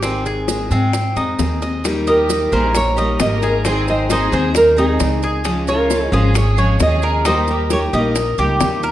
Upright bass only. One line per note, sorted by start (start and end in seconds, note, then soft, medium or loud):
0.00 0.65 G#1 medium
0.71 1.13 G#2 medium
1.16 1.37 F2 medium
1.39 2.46 D#2 medium
2.52 3.16 A#1 loud
3.20 4.26 G#1 medium
4.32 4.96 D#2 loud
5.00 6.07 C#2 medium
6.12 6.76 G#1 loud
6.80 7.87 D#2 medium
7.93 8.35 A#1 medium
8.38 8.59 C#2 medium
8.61 8.92 D#2 medium